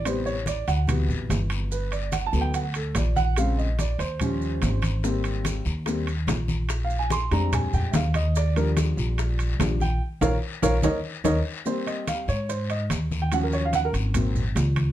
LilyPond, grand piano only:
<<
  \new Staff \with { instrumentName = "Grand piano" } { \time 4/4 \key ees \major \tempo 4 = 145 c''8 des''8 d''8 ges''4 r4. | b'8 d''8 \tuplet 3/2 { fis''8 a''8 g''8 } fis''8 a'8 d''8 fis''8 | f''8 ees''8 d''8 c''2~ c''8 | r1 |
\tuplet 3/2 { r8 f''8 aes''8 } c'''8 bes''8 aes''8 g''8 <fes'' f''>8 ees''8 | d''8 bes'8 r2 r8 g''8 | r8 <bes' des'' f''>8 r8 <bes' des'' f''>8 <bes' des'' ees''>8 r8 <bes' des'' ees''>8 r8 | \key aes \major c''8 ees''8 f''8 des''8 c''8 ees''8 r8. g''16 |
ges''16 bes'16 des''16 f''16 ges''16 bes'16 r2 r8 | }
  \new Staff \with { instrumentName = "Grand piano" } { \clef bass \time 4/4 \key ees \major <c g b>8 r4. <c e fis b>2 | r4. <fis a b>8 r2 | <des aes c'>8 r4. <f g des'>4. r8 | <g bes c'>4. r8 <g bes c'>8 r4. |
r4. <g aes c' d'>4. r4 | r8 <f g d'>2~ <f g d'>8 <f g d'>8 r8 | r1 | \key aes \major <g bes c'>4. r2 r8 |
<f ges des'>2 <ges bes c'>8 r4. | }
>>